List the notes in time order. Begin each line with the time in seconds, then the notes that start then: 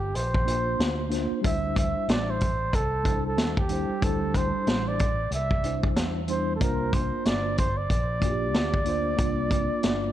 Already playing: G1 G4
0.15 A#1 C5, closed hi-hat
0.34 kick
0.45 A#3 D4 F4 C5, closed hi-hat
0.79 D2, snare, closed hi-hat
1.09 A#3 D4 F4 C5, closed hi-hat
1.13 snare
1.31 muted fretless electric bass stroke
1.41 D2 G3 D4 E4 C5, kick, closed hi-hat
1.46 E5
1.76 E5, kick, closed hi-hat
1.95 muted fretless electric bass stroke
2.08 A1 D5, snare, closed hi-hat
2.30 C5
2.41 kick, closed hi-hat
2.73 C2 A4, kick, closed hi-hat
3.03 G3 D4 E4 C5, kick, closed hi-hat
3.27 A4
3.37 D#2, snare, closed hi-hat
3.57 G4, kick
3.69 G3 D4 E4 C5, closed hi-hat
3.89 muted fretless electric bass stroke
4.01 D2 G3 D4 E4 A4, kick, closed hi-hat
4.05 C5
4.34 C5, kick, closed hi-hat
4.54 muted fretless electric bass stroke
4.67 A1, snare, closed hi-hat
4.88 D5
4.99 kick, closed hi-hat
5.31 C2 E5, closed hi-hat
5.51 kick
5.62 G3 D4 E4 C5, closed hi-hat
5.83 kick
5.95 E2, snare, closed hi-hat
6.27 G3 D4 E4 C5, closed hi-hat
6.56 A#3 A4
6.61 C2 D4 F4 A#4 C5, kick, closed hi-hat
6.93 C5, kick, closed hi-hat
7.13 muted fretless electric bass stroke
7.25 G1 D5, snare, closed hi-hat
7.58 C5, kick, closed hi-hat
7.78 D5
7.90 A#1, kick, closed hi-hat
8.20 A#3 D4 F4 F#4, kick, closed hi-hat
8.30 G4
8.54 D2, snare, closed hi-hat
8.74 kick
8.84 A#3 D4 F4, closed hi-hat
8.88 C5
9.17 C2 A#3 D4 F4 D5, kick, closed hi-hat
9.51 kick, closed hi-hat
9.71 muted fretless electric bass stroke
9.83 G1, snare, closed hi-hat